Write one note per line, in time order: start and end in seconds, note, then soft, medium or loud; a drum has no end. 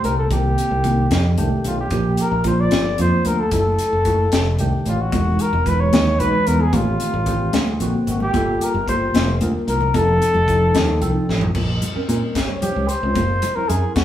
0.00 0.15 A#2 medium
0.00 0.16 G3 medium
0.00 0.16 A3 medium
0.00 0.16 G4 medium
0.00 closed hi-hat medium
0.04 0.28 C2 medium
0.04 0.17 A#4 medium
0.18 0.30 A4 medium
0.30 0.54 C2 medium
0.30 0.69 D#3 medium
0.30 0.69 A#3 medium
0.30 0.69 C4 medium
0.30 0.70 G4 medium
0.30 1.34 G4 medium
0.30 kick medium
0.30 closed hi-hat medium
0.58 closed hi-hat medium
0.71 1.06 C2 medium
0.83 1.11 D#3 medium
0.83 1.11 A#3 medium
0.83 1.11 C4 medium
0.83 1.11 D#4 medium
0.83 kick medium
0.83 closed hi-hat medium
1.11 1.34 F2 medium
1.11 snare loud
1.11 closed hi-hat medium
1.37 1.50 C2 medium
1.37 1.76 D#3 medium
1.37 1.76 A3 medium
1.37 1.76 D4 medium
1.37 1.77 G4 loud
1.37 closed hi-hat soft
1.51 muted fingered electric bass stroke soft
1.64 1.88 B1 medium
1.64 1.78 F4 medium
1.64 closed hi-hat medium
1.80 2.22 G4 medium
1.91 2.15 A#1 medium
1.91 2.29 F3 medium
1.91 2.30 A#3 medium
1.91 2.30 D4 medium
1.91 2.30 G4 medium
1.91 kick loud
1.91 closed hi-hat medium
2.17 2.46 A#4 medium
2.17 closed hi-hat medium
2.32 2.67 A#1 medium
2.43 2.83 F3 medium
2.43 2.83 A#3 medium
2.43 2.83 D4 medium
2.43 2.83 F4 medium
2.43 kick medium
2.43 closed hi-hat medium
2.47 2.62 C5 medium
2.60 3.00 D5 medium
2.71 2.95 G1 medium
2.71 snare loud
2.71 closed hi-hat medium
2.98 3.11 F2 medium
2.98 3.37 F3 medium
2.98 3.37 A#3 medium
2.98 3.37 D4 medium
2.98 3.37 F4 medium
2.98 3.28 C5 medium
2.98 closed hi-hat medium
3.12 muted fingered electric bass stroke soft
3.25 3.49 D2 medium
3.25 3.41 A#4 medium
3.25 closed hi-hat medium
3.40 3.52 A4 medium
3.51 3.75 F#1 medium
3.51 3.90 F#3 medium
3.51 3.91 A3 medium
3.51 3.91 E4 medium
3.51 4.55 A4 medium
3.51 3.91 A4 medium
3.51 kick medium
3.51 closed hi-hat medium
3.79 closed hi-hat medium
3.93 4.28 F#1 medium
4.05 4.32 F#3 medium
4.05 4.32 A3 medium
4.05 4.33 E4 medium
4.05 4.33 F#4 medium
4.05 kick medium
4.05 closed hi-hat medium
4.32 4.56 F1 medium
4.32 snare loud
4.32 closed hi-hat medium
4.59 4.71 C2 medium
4.59 4.97 D#3 medium
4.59 4.97 A3 medium
4.59 4.98 D4 medium
4.59 4.98 G4 loud
4.59 closed hi-hat medium
4.73 muted fingered electric bass stroke soft
4.86 5.10 A1 medium
4.86 5.02 F4 medium
4.86 closed hi-hat soft
5.01 5.43 F#4 medium
5.11 5.36 E1 medium
5.11 5.50 E3 medium
5.11 5.51 G#3 medium
5.11 5.51 D#4 medium
5.11 5.51 F#4 medium
5.11 kick loud
5.11 closed hi-hat medium
5.11 high conga medium
5.39 5.69 A#4 medium
5.39 closed hi-hat medium
5.53 5.88 E1 medium
5.53 low conga medium
5.66 6.04 E3 medium
5.66 6.04 G#3 medium
5.66 6.05 D#4 medium
5.66 6.05 F#4 medium
5.66 5.82 B4 medium
5.66 kick medium
5.66 closed hi-hat medium
5.66 low conga soft
5.80 6.21 C#5 medium
5.93 6.17 D#2 medium
5.93 snare loud
5.93 closed hi-hat medium
5.93 high conga medium
6.06 low conga medium
6.19 6.32 B1 medium
6.19 6.58 E3 medium
6.19 6.58 G#3 medium
6.19 6.58 D#4 medium
6.19 6.59 F#4 medium
6.19 6.49 B4 medium
6.19 closed hi-hat medium
6.19 low conga soft
6.34 muted fingered electric bass stroke soft
6.47 6.70 E2 medium
6.47 6.62 A#4 medium
6.47 closed hi-hat medium
6.60 6.75 G#4 medium
6.60 low conga medium
6.73 6.97 A1 medium
6.73 7.11 D#3 medium
6.73 7.12 A3 medium
6.73 7.12 C4 medium
6.73 7.81 F4 medium
6.73 7.12 G4 medium
6.73 kick medium
6.73 closed hi-hat medium
6.73 high conga medium
7.00 closed hi-hat medium
7.14 7.49 A1 medium
7.14 low conga medium
7.26 7.53 D#3 medium
7.26 7.54 A3 medium
7.26 7.54 C4 medium
7.26 7.54 G4 medium
7.26 kick medium
7.26 closed hi-hat medium
7.26 low conga soft
7.53 7.77 D2 medium
7.53 snare loud
7.53 closed hi-hat medium
7.53 high conga medium
7.67 low conga medium
7.80 7.92 A#1 medium
7.80 8.19 D3 medium
7.80 8.19 A#3 medium
7.80 8.19 C4 medium
7.80 8.19 F#4 medium
7.80 closed hi-hat medium
7.80 low conga soft
7.94 muted fingered electric bass stroke soft
8.07 8.31 G#1 medium
8.07 8.20 F#4 medium
8.07 closed hi-hat soft
8.20 8.64 G4 medium
8.20 low conga medium
8.34 8.57 G1 medium
8.34 8.72 G3 medium
8.34 8.72 A#3 medium
8.34 8.73 F4 medium
8.34 8.73 A4 medium
8.34 kick medium
8.34 closed hi-hat medium
8.34 high conga medium
8.61 8.88 A#4 medium
8.61 closed hi-hat medium
8.74 9.10 G1 medium
8.74 low conga medium
8.88 9.26 G3 medium
8.88 9.26 A#3 medium
8.88 9.26 F4 medium
8.88 9.27 G4 medium
8.88 9.38 C5 medium
8.88 kick medium
8.88 closed hi-hat medium
8.88 low conga soft
9.14 9.38 F1 medium
9.14 snare loud
9.14 closed hi-hat medium
9.14 high conga medium
9.27 low conga medium
9.40 9.53 D2 loud
9.40 9.79 G3 medium
9.40 9.79 A#3 medium
9.40 9.79 F4 medium
9.40 9.80 A#4 medium
9.40 closed hi-hat medium
9.40 low conga soft
9.54 muted fingered electric bass stroke soft
9.68 9.91 C2 medium
9.68 9.96 A#4 medium
9.68 closed hi-hat soft
9.81 low conga medium
9.94 10.18 F1 medium
9.94 10.32 F3 medium
9.94 10.33 C4 medium
9.94 10.33 D#4 medium
9.94 11.02 A4 loud
9.94 10.33 A4 medium
9.94 kick medium
9.94 closed hi-hat medium
9.94 high conga medium
10.21 closed hi-hat medium
10.21 low conga soft
10.34 10.70 F1 medium
10.34 low conga medium
10.47 10.86 F3 medium
10.47 10.86 C4 medium
10.47 10.87 D#4 medium
10.47 10.87 A4 medium
10.47 kick medium
10.47 closed hi-hat medium
10.74 10.98 D#2 medium
10.74 snare loud
10.74 closed hi-hat medium
10.74 high conga medium
10.88 low conga medium
11.01 11.13 C2 loud
11.01 11.39 F3 medium
11.01 11.40 C4 medium
11.01 11.40 D#4 medium
11.01 11.40 A4 loud
11.01 closed hi-hat medium
11.15 muted fingered electric bass stroke soft
11.15 low conga soft
11.29 11.52 A1 medium
11.29 snare soft
11.41 floor tom medium
11.41 low conga medium
11.55 11.79 A#1 medium
11.55 kick medium
11.55 crash medium
11.55 high conga medium
11.55 low conga soft
11.82 closed hi-hat medium
11.82 low conga medium
11.94 12.33 G3 medium
11.94 12.33 C4 medium
11.94 12.33 C#4 medium
11.94 12.34 A#4 medium
11.94 muted fingered electric bass stroke soft
12.09 12.20 A#2 medium
12.09 closed hi-hat medium
12.35 12.47 G1 medium
12.35 kick medium
12.35 snare medium
12.35 closed hi-hat medium
12.35 high conga medium
12.47 12.86 G3 medium
12.47 12.87 C#4 medium
12.47 12.87 C5 medium
12.47 12.87 C#5 medium
12.62 12.90 G4 medium
12.62 muted fingered electric bass stroke soft
12.62 closed hi-hat medium
12.62 low conga medium
12.76 12.88 C#2 medium
12.88 13.57 C5 medium
12.88 closed hi-hat medium
13.03 13.14 C#2 medium
13.03 13.16 G3 medium
13.03 13.16 C4 medium
13.03 13.16 C#4 medium
13.03 13.17 F4 medium
13.03 low conga soft
13.15 13.39 F#1 medium
13.15 kick loud
13.15 closed hi-hat medium
13.15 high conga medium
13.15 low conga soft
13.42 closed hi-hat medium
13.42 low conga medium
13.55 13.94 F#3 medium
13.55 13.94 C4 medium
13.55 13.94 E4 medium
13.55 13.70 A#4 medium
13.55 13.95 A#4 medium
13.55 muted fingered electric bass stroke soft
13.68 13.81 F#2 medium
13.68 13.95 G#4 medium
13.68 closed hi-hat medium
13.95 14.04 E1 medium
13.95 14.04 F#4 medium
13.95 kick medium
13.95 snare loud
13.95 closed hi-hat medium
13.95 high conga medium